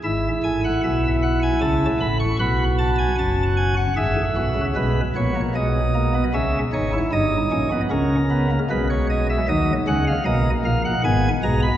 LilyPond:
<<
  \new Staff \with { instrumentName = "Pipe organ" } { \time 3/4 \key e \major \tempo 4 = 76 e''8 gis''16 fis''16 e''8 fis''16 gis''16 a''8 b''16 cis'''16 | b''8 a''16 gis''16 a''8 gis''16 fis''16 e''4 | \key gis \minor b'8 cis''8 dis''4 e''8 cis''8 | dis''4 ais'4 b'16 cis''16 dis''16 e''16 |
dis''8 fis''16 eis''16 dis''8 eis''16 fis''16 gis''8 ais''16 b''16 | }
  \new Staff \with { instrumentName = "Pipe organ" } { \clef bass \time 3/4 \key e \major << { e'2. | fis'2 gis'8 fis'8 | \key gis \minor gis8 b16 ais16 gis8 ais16 b16 cis'8 dis'16 e'16 | dis'8 cis'16 b16 cis'8 b16 ais16 gis4 |
fis8 gis8 ais4 b8 gis8 | } \\ { <gis,, gis,>8 <a,, a,>8 <b,, b,>4 <cis, cis>8 <a,, a,>8 | <b,, b,>4 <fis,, fis,>4 <gis,, gis,>16 <a,, a,>16 <b,, b,>16 <cis, cis>16 | <b,, b,>8 <ais,, ais,>8 <b,, b,>4 <cis, cis>8 <gis,, gis,>8 | <g,, g,>8 <ais,, ais,>8 <cis, cis>4 <b,, b,>4 |
<dis, dis>8 <cis, cis>8 <b,, b,>8 <ais,, ais,>8 <gis,, gis,>8 <b,, b,>8 | } >> }
>>